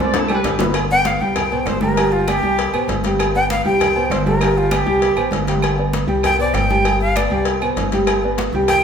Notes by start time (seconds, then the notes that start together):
Already playing: C2
0.00 C4 C5 D5 C6, high conga
0.14 E4 A4, cowbell, high bongo, high conga, low agogo
0.28 G3 E4 G4 B4 G5, low timbale, low agogo, claves
0.44 G1, cowbell, low conga, low timbale
0.59 B3 B4 B5, cowbell, low bongo, low conga, low timbale
0.74 cowbell, high conga, low agogo, claves
0.90 B3 B4 D5 G5, high conga
1.05 F5, cowbell, high conga, low timbale, low agogo
1.20 C2 G3 G4 G5, high conga
1.36 cowbell, high conga, low conga, low agogo, claves
1.51 B2 B4 C5, high conga, low agogo
1.66 G1 C5, cowbell, high conga, low timbale
1.81 G3 G4 A#4 G5, high conga, low agogo
1.97 G3 G4 G5, cowbell, high conga, low agogo, claves
2.12 F4, high conga
2.27 B3 G4 B4 D5, cowbell, high conga, low timbale, low agogo, claves
2.43 C2 G3 G4 G5, high conga
2.58 cowbell, high conga, low agogo
2.73 A1 B2 B4 C5, high conga, low agogo, claves
2.88 G1, cowbell, high conga, low timbale
3.04 G3 G4 G5, cowbell, high conga
3.19 cowbell, high conga, low agogo, claves
3.35 B3 B4 D5 G5, high conga
3.50 F5, cowbell, high conga, low timbale, low agogo
3.65 C2 G3 G4 G5, high conga
3.80 cowbell, high conga, low conga, low agogo, claves
3.96 B2 B4 C5, high conga, low agogo
4.10 G1 C5, cowbell, high conga, low timbale
4.26 G3 G4 A#4 G5, high conga, low agogo
4.41 G3 G4 G5, cowbell, high conga, low agogo, claves
4.57 F4, high conga
4.71 B3 G4 B4 D5, cowbell, high conga, low timbale, low agogo, claves
4.86 C2 G3 G4 G5, high conga
5.02 cowbell, high conga, low agogo
5.16 A1 B2 B4 C5, high conga, low agogo, claves
5.31 G1, cowbell, high conga, low timbale
5.47 G3 G4 G5, cowbell, high conga
5.62 cowbell, high conga, low agogo, claves
5.78 B3 B4 D5, high conga
5.93 cowbell, high conga, low timbale, low agogo
6.07 C2 G3 G4 G5, high conga
6.23 G5, cowbell, high conga, low conga, low agogo, claves
6.39 B2 B4 C5 D5, high conga, low agogo
6.54 G1 G5, cowbell, high conga, low timbale
6.70 G3 G4 G5, high conga, low agogo
6.84 G3 G4 G5, cowbell, high conga, low agogo, claves
7.01 F5, high conga
7.16 B3 B4 D5, cowbell, high conga, low timbale, low agogo, claves
7.30 C2 G3 G4 G5, high conga
7.45 cowbell, high conga, low agogo
7.62 B2 B4 C5, high conga, low agogo, claves
7.76 G1, cowbell, high conga, low timbale
7.92 G3 G4 G5, cowbell, high conga
8.07 cowbell, high conga, low agogo, claves
8.23 B3 B4 D5, high conga
8.38 cowbell, high conga, low timbale, low agogo
8.52 C2 G3 G4 G5, high conga
8.68 G5, cowbell, high conga, low conga, low agogo, claves